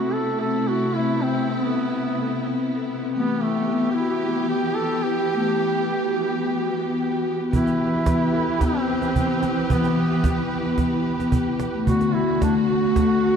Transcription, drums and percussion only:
7.53 cajon bass soft
7.67 cajon slap soft
7.80 cajon slap soft
8.06 cajon bass medium
8.06 cajon slap medium
8.22 cajon slap soft
8.34 cajon slap soft
8.61 cajon bass medium
8.61 cajon slap soft
9.02 cajon slap soft
9.16 cajon bass soft
9.43 cajon slap soft
9.70 cajon bass medium
9.84 cajon slap soft
9.97 cajon slap soft
10.24 cajon bass medium
10.24 cajon slap medium
10.39 cajon slap soft
10.78 cajon bass medium
10.78 cajon slap soft
11.20 cajon slap soft
11.32 cajon bass medium
11.60 cajon slap medium
11.87 cajon bass medium
12.01 cajon slap soft
12.14 cajon slap soft
12.42 cajon bass medium
12.42 cajon slap medium
12.57 cajon slap soft
12.70 cajon slap soft
12.96 cajon bass medium
12.96 cajon slap medium

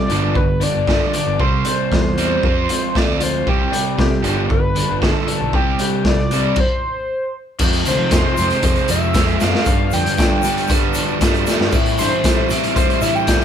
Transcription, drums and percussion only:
0.10 closed hi-hat medium
0.35 kick loud
0.61 closed hi-hat medium
0.87 kick loud
0.87 snare medium
1.14 closed hi-hat medium
1.40 kick loud
1.65 closed hi-hat medium
1.92 kick loud
1.92 snare loud
2.18 closed hi-hat medium
2.43 kick loud
2.69 closed hi-hat medium
2.95 kick loud
2.95 snare loud
3.21 closed hi-hat medium
3.47 kick loud
3.73 closed hi-hat medium
3.99 kick loud
3.99 snare loud
4.24 closed hi-hat medium
4.50 kick loud
4.76 closed hi-hat medium
5.02 kick loud
5.02 snare loud
5.28 closed hi-hat medium
5.53 kick loud
5.79 closed hi-hat medium
6.05 kick loud
6.05 snare loud
6.31 closed hi-hat medium
6.56 kick loud
6.56 crash medium
7.59 kick loud
7.59 crash loud
7.59 shaker medium
7.73 closed hi-hat soft
7.85 closed hi-hat medium
7.85 shaker medium
8.11 kick loud
8.11 snare loud
8.11 closed hi-hat loud
8.11 shaker medium
8.37 closed hi-hat medium
8.37 shaker medium
8.50 closed hi-hat soft
8.63 kick loud
8.63 closed hi-hat loud
8.63 shaker medium
8.76 closed hi-hat soft
8.88 closed hi-hat medium
8.88 shaker medium
9.02 shaker soft
9.14 kick loud
9.14 snare loud
9.14 closed hi-hat medium
9.14 shaker medium
9.27 closed hi-hat soft
9.40 snare medium
9.40 closed hi-hat medium
9.40 shaker medium
9.55 snare medium
9.65 kick loud
9.65 closed hi-hat medium
9.65 shaker medium
9.91 closed hi-hat medium
9.91 shaker medium
10.06 closed hi-hat soft
10.17 kick loud
10.17 snare loud
10.17 closed hi-hat medium
10.17 shaker medium
10.42 closed hi-hat medium
10.42 shaker medium
10.57 closed hi-hat soft
10.67 kick loud
10.67 closed hi-hat loud
10.67 shaker medium
10.94 closed hi-hat medium
10.94 shaker medium
11.21 kick loud
11.21 snare loud
11.21 closed hi-hat loud
11.21 shaker medium
11.34 closed hi-hat soft
11.46 snare medium
11.46 closed hi-hat medium
11.46 shaker medium
11.61 snare medium
11.72 kick loud
11.72 crash medium
11.72 shaker medium
11.86 closed hi-hat medium
11.98 closed hi-hat medium
11.98 shaker medium
12.24 kick loud
12.24 snare loud
12.24 closed hi-hat loud
12.24 shaker medium
12.50 closed hi-hat medium
12.50 shaker medium
12.63 closed hi-hat soft
12.76 kick loud
12.76 closed hi-hat loud
12.76 shaker medium
12.90 closed hi-hat soft
13.01 closed hi-hat medium
13.01 shaker medium
13.15 shaker soft
13.27 kick loud
13.27 snare loud
13.27 closed hi-hat loud
13.27 shaker medium
13.41 closed hi-hat soft

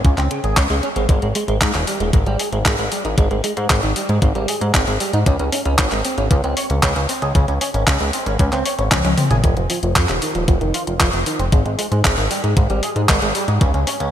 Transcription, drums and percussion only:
0.05 kick loud
0.05 closed hi-hat medium
0.18 clap soft
0.18 closed hi-hat soft
0.31 closed hi-hat medium
0.44 closed hi-hat soft
0.57 kick loud
0.57 clap loud
0.57 closed hi-hat medium
0.70 closed hi-hat soft
0.83 closed hi-hat soft
0.96 closed hi-hat soft
1.09 kick loud
1.09 closed hi-hat medium
1.22 closed hi-hat soft
1.35 open hi-hat loud
1.48 closed hi-hat soft
1.61 kick loud
1.61 clap loud
1.61 closed hi-hat medium
1.74 clap soft
1.74 closed hi-hat soft
1.87 open hi-hat loud
2.00 closed hi-hat soft
2.13 kick loud
2.13 closed hi-hat medium
2.26 closed hi-hat soft
2.39 open hi-hat loud
2.53 closed hi-hat soft
2.65 kick loud
2.65 clap loud
2.65 closed hi-hat medium
2.79 closed hi-hat soft
2.92 open hi-hat medium
3.05 closed hi-hat soft
3.18 kick loud
3.18 closed hi-hat medium
3.31 closed hi-hat soft
3.44 open hi-hat loud
3.57 closed hi-hat soft
3.70 kick loud
3.70 clap loud
3.70 closed hi-hat medium
3.83 closed hi-hat soft
3.96 open hi-hat loud
4.09 closed hi-hat soft
4.22 kick loud
4.22 closed hi-hat medium
4.35 closed hi-hat soft
4.48 open hi-hat loud
4.61 closed hi-hat soft
4.74 kick loud
4.74 clap loud
4.74 closed hi-hat medium
4.87 closed hi-hat soft
5.00 open hi-hat loud
5.13 closed hi-hat soft
5.26 kick loud
5.26 closed hi-hat loud
5.39 closed hi-hat soft
5.52 open hi-hat loud
5.65 closed hi-hat soft
5.78 kick loud
5.78 clap loud
5.78 closed hi-hat loud
5.92 clap soft
5.92 closed hi-hat soft
6.05 open hi-hat loud
6.18 closed hi-hat soft
6.31 kick loud
6.31 closed hi-hat medium
6.44 closed hi-hat soft
6.57 open hi-hat loud
6.70 closed hi-hat soft
6.83 kick loud
6.83 clap loud
6.83 closed hi-hat medium
6.96 closed hi-hat soft
7.09 open hi-hat loud
7.22 closed hi-hat soft
7.35 kick loud
7.35 closed hi-hat medium
7.48 closed hi-hat soft
7.61 open hi-hat loud
7.74 closed hi-hat soft
7.87 kick loud
7.87 clap loud
7.87 closed hi-hat loud
8.00 closed hi-hat soft
8.13 open hi-hat loud
8.26 closed hi-hat soft
8.39 kick loud
8.39 closed hi-hat medium
8.52 clap soft
8.52 closed hi-hat soft
8.66 open hi-hat loud
8.79 closed hi-hat soft
8.92 kick loud
8.92 clap loud
8.92 closed hi-hat loud
8.92 high tom medium
9.05 closed hi-hat soft
9.05 high tom medium
9.18 open hi-hat medium
9.18 mid tom medium
9.31 closed hi-hat soft
9.31 mid tom medium
9.44 kick loud
9.44 closed hi-hat medium
9.57 closed hi-hat soft
9.70 open hi-hat loud
9.83 closed hi-hat soft
9.96 kick loud
9.96 clap loud
9.96 closed hi-hat loud
10.09 clap soft
10.09 closed hi-hat soft
10.22 open hi-hat medium
10.35 closed hi-hat soft
10.48 kick loud
10.48 closed hi-hat medium
10.61 closed hi-hat soft
10.74 open hi-hat loud
10.87 closed hi-hat soft
11.00 kick loud
11.00 clap loud
11.00 closed hi-hat medium
11.13 closed hi-hat soft
11.26 open hi-hat medium
11.39 closed hi-hat soft
11.52 kick loud
11.52 closed hi-hat medium
11.66 closed hi-hat soft
11.79 open hi-hat loud
11.92 closed hi-hat soft
12.05 kick loud
12.05 clap loud
12.05 closed hi-hat medium
12.18 closed hi-hat soft
12.31 open hi-hat medium
12.44 closed hi-hat soft
12.57 kick loud
12.57 closed hi-hat medium
12.70 closed hi-hat soft
12.83 open hi-hat loud
12.96 closed hi-hat soft
13.09 kick loud
13.09 clap loud
13.09 closed hi-hat loud
13.22 closed hi-hat soft
13.35 open hi-hat medium
13.48 closed hi-hat soft
13.61 kick loud
13.61 closed hi-hat medium
13.74 closed hi-hat soft
13.87 open hi-hat loud
14.00 closed hi-hat soft

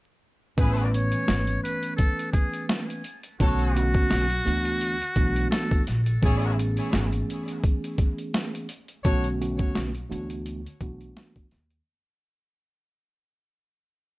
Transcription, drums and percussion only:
0.58 kick loud
0.58 closed hi-hat medium
0.77 closed hi-hat medium
0.94 closed hi-hat medium
1.12 closed hi-hat soft
1.28 snare loud
1.28 closed hi-hat medium
1.47 closed hi-hat medium
1.65 closed hi-hat medium
1.83 closed hi-hat medium
1.98 kick loud
1.98 closed hi-hat medium
2.19 closed hi-hat medium
2.34 kick medium
2.34 closed hi-hat medium
2.54 closed hi-hat medium
2.69 snare loud
2.69 closed hi-hat medium
2.90 closed hi-hat medium
3.04 closed hi-hat medium
3.23 closed hi-hat soft
3.40 kick loud
3.40 closed hi-hat medium
3.59 closed hi-hat soft
3.77 closed hi-hat medium
3.94 kick loud
3.94 closed hi-hat soft
4.11 snare loud
4.11 closed hi-hat medium
4.30 closed hi-hat medium
4.47 closed hi-hat medium
4.65 closed hi-hat medium
4.81 closed hi-hat medium
5.02 closed hi-hat medium
5.16 kick medium
5.16 closed hi-hat medium
5.36 closed hi-hat medium
5.52 snare loud
5.52 closed hi-hat medium
5.71 kick medium
5.71 closed hi-hat medium
5.87 snare soft
5.87 closed hi-hat medium
6.06 closed hi-hat soft
6.23 kick loud
6.23 closed hi-hat medium
6.42 closed hi-hat medium
6.59 closed hi-hat medium
6.77 closed hi-hat soft
6.93 snare loud
6.93 closed hi-hat medium
7.12 closed hi-hat medium
7.30 closed hi-hat medium
7.48 closed hi-hat medium
7.64 kick loud
7.64 closed hi-hat medium
7.84 closed hi-hat medium
7.98 kick medium
7.98 closed hi-hat medium
8.18 closed hi-hat medium
8.34 snare loud
8.34 closed hi-hat medium
8.55 closed hi-hat medium
8.69 closed hi-hat medium
8.88 closed hi-hat soft
9.05 kick loud
9.05 closed hi-hat medium
9.24 closed hi-hat medium
9.42 closed hi-hat medium
9.59 kick loud
9.59 closed hi-hat medium
9.75 snare loud
9.75 closed hi-hat medium
9.95 closed hi-hat medium
10.12 closed hi-hat medium
10.30 closed hi-hat medium
10.46 closed hi-hat medium
10.66 closed hi-hat medium
10.81 kick medium
10.81 closed hi-hat medium
11.01 closed hi-hat medium
11.17 snare loud
11.17 closed hi-hat medium
11.36 kick medium
11.36 closed hi-hat medium
11.51 snare soft
11.51 closed hi-hat medium
11.70 closed hi-hat medium

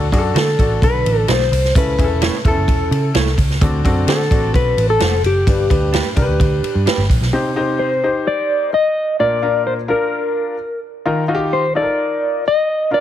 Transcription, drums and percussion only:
0.12 kick medium
0.12 ride medium
0.36 snare loud
0.36 ride medium
0.59 kick medium
0.59 ride medium
0.82 kick loud
0.82 ride medium
1.06 ride medium
1.28 snare loud
1.28 ride medium
1.40 snare soft
1.53 open hi-hat medium
1.53 ride medium
1.65 snare soft
1.75 kick loud
1.75 hi-hat pedal medium
1.75 ride medium
1.99 kick medium
1.99 ride medium
2.22 snare loud
2.22 ride medium
2.45 kick medium
2.45 ride medium
2.68 kick loud
2.68 ride medium
2.92 ride medium
3.15 snare loud
3.15 ride medium
3.27 snare soft
3.38 kick medium
3.38 open hi-hat soft
3.38 ride medium
3.50 snare soft
3.61 kick loud
3.61 hi-hat pedal medium
3.61 ride medium
3.85 kick medium
3.85 ride medium
4.08 snare loud
4.08 ride medium
4.20 snare soft
4.31 kick medium
4.31 ride medium
4.54 kick loud
4.54 ride medium
4.78 ride medium
5.00 snare loud
5.00 ride medium
5.24 ride medium
5.47 kick loud
5.47 ride medium
5.70 kick medium
5.70 ride medium
5.94 snare loud
5.94 ride medium
6.17 kick medium
6.17 ride medium
6.40 kick loud
6.40 ride medium
6.64 ride medium
6.87 snare loud
6.87 ride medium
6.99 snare soft
7.10 kick medium
7.10 open hi-hat medium
7.10 ride medium
7.22 snare soft

